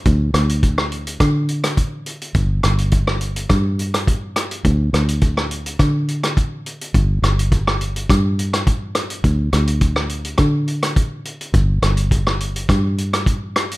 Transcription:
<<
  \new Staff \with { instrumentName = "Fingered electric bass" } { \clef bass \time 4/4 \key d \mixolydian \tempo 4 = 104 d,8 d,4. d2 | g,,8 g,,4. g,2 | d,8 d,4. d2 | g,,8 g,,4. g,2 |
d,8 d,4. d2 | g,,8 g,,4. g,2 | }
  \new DrumStaff \with { instrumentName = "Drums" } \drummode { \time 4/4 <hh bd>8 <hh ss>16 hh16 <hh bd>16 ss16 hh16 hh16 <hh bd ss>8 hh16 <hh ss>16 <hh bd>8 hh16 hh16 | <hh bd>8 <hh ss>16 hh16 <hh bd>16 ss16 hh16 hh16 <hh bd ss>8 hh16 <hh ss>16 <hh bd>8 <hh ss>16 hh16 | <hh bd>8 <hh ss>16 hh16 <hh bd>16 ss16 hh16 hh16 <hh bd ss>8 hh16 <hh ss>16 <hh bd>8 hh16 hh16 | <hh bd>8 <hh ss>16 hh16 <hh bd>16 ss16 hh16 hh16 <hh bd ss>8 hh16 <hh ss>16 <hh bd>8 <hh ss>16 hh16 |
<hh bd>8 <hh ss>16 hh16 <hh bd>16 ss16 hh16 hh16 <hh bd ss>8 hh16 <hh ss>16 <hh bd>8 hh16 hh16 | <hh bd>8 <hh ss>16 hh16 <hh bd>16 ss16 hh16 hh16 <hh bd ss>8 hh16 <hh ss>16 <hh bd>8 <hh ss>16 hh16 | }
>>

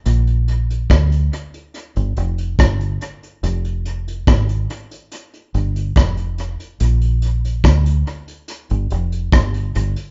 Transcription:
<<
  \new Staff \with { instrumentName = "Fingered electric bass" } { \clef bass \time 4/4 \key f \dorian \tempo 4 = 71 bes,,4 d,8 r8. g,,16 f,,8 g,,8 r8 | f,,4 aes,,8 r4 g,,8 f,,8. r16 | bes,,4 d,8 r8. g,,16 f,,8 g,,8 g,,16 r16 | }
  \new DrumStaff \with { instrumentName = "Drums" } \drummode { \time 4/4 hh16 hh16 hh16 hh16 <hh bd ss>16 hh16 hh16 hh16 hh16 hh16 hh16 hh16 <hh bd ss>16 hh16 hh16 hh16 | hh16 hh16 hh16 hh16 <hh bd ss>16 hh16 hh16 hh16 hh16 hh16 hh16 hh16 <hh bd ss>16 hh16 hh16 hh16 | hh16 hh16 hh16 hh16 <hh bd ss>16 hh16 hh16 hh16 hh16 hh16 hh16 hh16 <hh bd ss>16 hh16 hh16 hh16 | }
>>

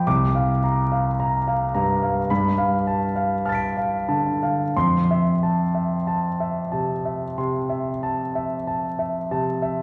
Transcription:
<<
  \new Staff \with { instrumentName = "Grand piano" } { \time 4/4 \key g \mixolydian \tempo 4 = 47 << { d'''8 r4. b''8 r8 <f''' a''' b''' d''''>4 | c'''8 r2. r8 | } \\ { r16 f''16 bes''16 f''16 bes''16 f''16 bes''16 f''16 r16 f''16 a''16 f''16 a''16 f''16 a''16 f''16 | r16 e''16 a''16 e''16 a''16 e''16 a''16 e''16 c'''16 e''16 a''16 e''16 a''16 e''16 a''16 e''16 | } >> }
  \new Staff \with { instrumentName = "Grand piano" } { \clef bass \time 4/4 \key g \mixolydian c,4. g,8 g,4. d8 | f,4. c8 c8 r4 c8 | }
>>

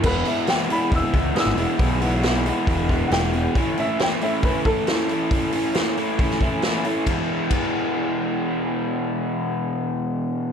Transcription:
<<
  \new Staff \with { instrumentName = "Upright piano" } { \time 4/4 \key e \major \tempo 4 = 136 <ais' b'>8 e''8 g''8 b''8 e'''4 <dis''' e'''>4~ | <dis''' e'''>2 r4 <fis'' g''>4 | r8 e''8 g''8 e''8 b'8 a'4.~ | a'8 r2. r8 |
r1 | r1 | }
  \new Staff \with { instrumentName = "Overdriven electric guitar" } { \clef bass \time 4/4 \key e \major <e, b, e gis b e'>8 <e, b, e gis b e'>8 <e, b, e gis b e'>8 <e, b, e gis b e'>8 <e, b, e gis b e'>8 <e, b, e gis b e'>8 <e, b, e gis b e'>8 <e, b, e gis b e'>8 | <e, b, e gis b e'>8 <e, b, e gis b e'>8 <e, b, e gis b e'>8 <e, b, e gis b e'>8 <e, b, e gis b e'>8 <e, b, e gis b e'>8 <e, b, e gis b e'>8 <e, b, e gis b e'>8 | <a, e a cis' e'>8 <a, e a cis' e'>8 <a, e a cis' e'>8 <a, e a cis' e'>8 <a, e a cis' e'>8 <a, e a cis' e'>8 <a, e a cis' e'>8 <a, e a cis' e'>8 | <a, e a cis' e'>8 <a, e a cis' e'>8 <a, e a cis' e'>8 <a, e a cis' e'>8 <a, e a cis' e'>8 <a, e a cis' e'>8 <a, e a cis' e'>8 <a, e a cis' e'>8 |
<e, b, e gis b e'>8 r8 <e, b, e gis b e'>2.~ | <e, b, e gis b e'>1 | }
  \new Staff \with { instrumentName = "Picked electric bass" } { \clef bass \time 4/4 \key e \major e,,8 r4. e,,16 r16 cis,8 r16 gis,,16 e,,16 r16 | b,,2 e,,4 e,,4 | r1 | r1 |
r1 | r1 | }
  \new DrumStaff \with { instrumentName = "Drums" } \drummode { \time 4/4 <cymc bd>8 hho8 <hho sn>8 hho8 <hho bd>8 <hho bd>8 <hho sn>8 hho8 | <hho bd>8 hho8 <hho sn>8 hho8 <hho bd>8 <hho bd>8 <hho sn>8 hho8 | <hho bd>8 hho8 <hho sn>8 hho8 <hho bd>8 <hho bd>8 <hho sn>8 hho8 | <hho bd>8 hho8 <hho sn>8 hho8 <hho bd>16 sn16 <hho bd>8 <hho sn>8 hho8 |
<bd cymr>4 <bd cymr>4 r4 r4 | r4 r4 r4 r4 | }
>>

